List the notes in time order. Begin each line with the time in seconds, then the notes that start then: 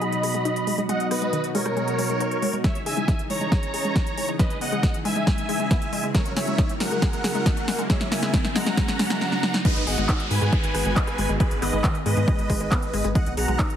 Already playing: D#5 B5
0.01 B2 F#3 D#4 F#4 G#4, closed hi-hat
0.12 closed hi-hat
0.23 B2 F#3 D#4 F#4 G#4, open hi-hat
0.34 B2 F#3 G#3 D#4 F#4, closed hi-hat
0.45 D#4, closed hi-hat
0.56 closed hi-hat
0.67 G#3, open hi-hat
0.78 B2 F#3 G#3 D#4 F#4, closed hi-hat
0.89 B2 F#3 G#3 D#4 F#4 D#5 F#5, closed hi-hat
1.00 B2 F#3 D#4 F#4, closed hi-hat
1.11 B3 B4 D#5, cross-stick, open hi-hat
1.22 B2 F#3 G#3 D#4 F#4, closed hi-hat
1.33 D#3, closed hi-hat
1.44 B2 F#3 D#4 F#4, closed hi-hat
1.55 B2 F#3 G#3 D#4 F#4 A#4 C#5, open hi-hat
1.66 B2 F#3 G#3 D#4 F#4, cross-stick, closed hi-hat
1.77 B2 F#3 G#3 D#4 F#4, closed hi-hat
1.88 closed hi-hat
1.99 B2 F#3 G#3 D#4 F#4, open hi-hat
2.10 B2 F#3 G#3 D#4 F#4, closed hi-hat
2.20 B3, closed hi-hat
2.31 closed hi-hat
2.42 G#3, open hi-hat
2.53 B2 F#3 G#3 D#4 F#4, closed hi-hat
2.64 C#3 E3 G#3 D#4 G#4 C#5 E5, kick, snare, closed hi-hat, riser
2.75 C#3 E3 D#4 G#4, closed hi-hat
2.86 G#4 E5 G#5, open hi-hat
2.97 C#3 E3 G#3 D#4 G#4
3.08 D#4, kick, snare, closed hi-hat
3.19 C#3 E3 D#4 G#4, closed hi-hat
3.30 C#3 E3 G#3 D#4 G#4 C#5 A#5, open hi-hat
3.41 C#3 E3 G#3 D#4 G#4, closed hi-hat
3.52 C#3 E3 D#4 G#4, kick, snare, closed hi-hat
3.63 closed hi-hat
3.74 C#3 E3 D#4 G#4, open hi-hat
3.85 C#3 E3 G#3 D#4 G#4, closed hi-hat
3.96 D#4, kick, snare, closed hi-hat
4.07 closed hi-hat
4.17 G#3, open hi-hat
4.28 C#3 E3 G#3 D#4 G#4, closed hi-hat
4.39 C#3 E3 G#3 D#4 G#4 B4 D#5, kick, snare, closed hi-hat
4.50 C#3 E3 D#4 G#4, closed hi-hat
4.61 B3 D#5 F#5, open hi-hat
4.72 C#3 E3 G#3 D#4 G#4, closed hi-hat
4.83 D#3, kick, snare, closed hi-hat
4.94 C#3 E3 D#4 G#4, closed hi-hat
5.05 C#3 E3 G#3 D#4 G#4 E5 G#5, open hi-hat
5.16 C#3 E3 G#3 D#4 G#4, closed hi-hat
5.27 C#3 E3 G#3 D#4 G#4, kick, snare, closed hi-hat
5.38 closed hi-hat
5.49 C#3 E3 G#3 D#4 G#4, open hi-hat
5.60 C#3 E3 G#3 D#4 G#4, closed hi-hat
5.71 B3, kick, snare, closed hi-hat
5.82 closed hi-hat
5.93 G#3, open hi-hat
6.04 C#3 E3 G#3 D#4 G#4, closed hi-hat
6.15 C#3 F#3 G#3 E4 A#4 C#5, kick, snare, closed hi-hat
6.26 C#3 F#3 E4 A#4, closed hi-hat
6.36 G#4 C#5 E5, snare, open hi-hat
6.47 C#3 F#3 G#3 E4 A#4, closed hi-hat
6.58 D#4, kick, snare, closed hi-hat
6.69 C#3 F#3 E4 A#4, closed hi-hat
6.80 C#3 F#3 G#3 E4 A#4 F#5, snare, open hi-hat
6.91 C#3 F#3 G#3 E4 A#4, closed hi-hat
7.02 C#3 F#3 E4 G#4 A#4, kick, snare, closed hi-hat
7.13 closed hi-hat
7.24 C#3 F#3 E4 G#4 A#4, snare, open hi-hat
7.35 C#3 F#3 G#3 E4 A#4, closed hi-hat
7.46 D#4, kick, snare, closed hi-hat
7.57 closed hi-hat
7.68 G#3, snare, open hi-hat
7.79 C#3 F#3 G#3 E4 A#4, closed hi-hat
7.90 C#3 F#3 G#3 E4 A#4 C#5 E5, kick, snare, closed hi-hat
8.01 C#3 F#3 E4 A#4, snare, closed hi-hat
8.12 A#3 E5 G#5, snare, open hi-hat
8.23 C#3 F#3 G#3 E4 A#4, snare, closed hi-hat
8.34 D#3, kick, snare, closed hi-hat
8.45 C#3 F#3 E4 A#4, snare, closed hi-hat
8.55 C#3 F#3 G#3 E4 A#4 F#5 A#5, snare, open hi-hat
8.66 C#3 F#3 G#3 E4 A#4, snare, closed hi-hat
8.77 C#3 F#3 G#3 E4 A#4, kick, snare, closed hi-hat
8.88 snare, closed hi-hat
8.99 C#3 F#3 G#3 E4 A#4, snare, open hi-hat
9.10 C#3 F#3 G#3 E4 A#4, snare, closed hi-hat
9.21 snare
9.32 snare
9.43 snare
9.54 snare
9.65 D#3 G#3 B3 F#4 B4 D#5, kick, closed hi-hat, crash, downlifter
9.76 G#1 D#3 G#3 B3 F#4, closed hi-hat
9.87 G#1 G#4 D#5 F#5, open hi-hat
9.98 G#1 D#3 G#3 B3 F#4, closed hi-hat
10.09 D#4, kick, clap, closed hi-hat
10.20 D#3 G#3 B3 F#4, closed hi-hat
10.31 G#2 D#3 G#3 B3 F#4 B4 G#5, open hi-hat
10.42 G#2 D#3 G#3 B3 F#4, closed hi-hat
10.53 D#3 G#3 B3 F#4 G#4, kick, closed hi-hat
10.64 G#1, closed hi-hat
10.74 G#1 D#3 G#3 B3 F#4 G#4, cross-stick, open hi-hat
10.85 G#1 D#3 G#3 B3 F#4, closed hi-hat
10.96 D#4, kick, clap, closed hi-hat
11.07 cross-stick, closed hi-hat
11.18 G#1 G#3, open hi-hat
11.29 G#1 D#3 G#3 B3 F#4, closed hi-hat
11.40 D#3 G#3 B3 G#4 B4, kick, closed hi-hat
11.51 G#1 D#3 G#3 B3 G#4, closed hi-hat
11.62 G#1 B3 B4 D#5, cross-stick, clap, open hi-hat
11.73 G#1 D#3 G#3 B3 G#4, closed hi-hat
11.84 D#3, kick, clap, closed hi-hat
11.95 D#3 G#3 B3 G#4, closed hi-hat
12.06 G#2 D#3 G#3 B3 G#4 B4 D#5, open hi-hat
12.17 G#2 D#3 G#3 B3 G#4, closed hi-hat
12.28 D#3 G#3 B3 G#4, kick, closed hi-hat
12.39 G#1, closed hi-hat
12.50 G#1 D#3 G#3 B3 G#4, kick, open hi-hat
12.60 G#1 D#3 G#3 B3 G#4, closed hi-hat
12.72 B3, kick, clap, closed hi-hat
12.82 closed hi-hat
12.93 G#1 G#3, open hi-hat
13.04 G#1 D#3 G#3 B3 G#4, closed hi-hat
13.15 D#3 F#3 G#3 B3 F#4 D#5 F#5, kick, closed hi-hat
13.26 B1 D#3 F#3 B3 F#4, closed hi-hat
13.37 B1 G#4 F#5 A#5, open hi-hat
13.48 B1 D#3 F#3 G#3 B3 F#4, closed hi-hat
13.59 D#4, kick, clap, closed hi-hat
13.70 D#3 F#3 B3 F#4, closed hi-hat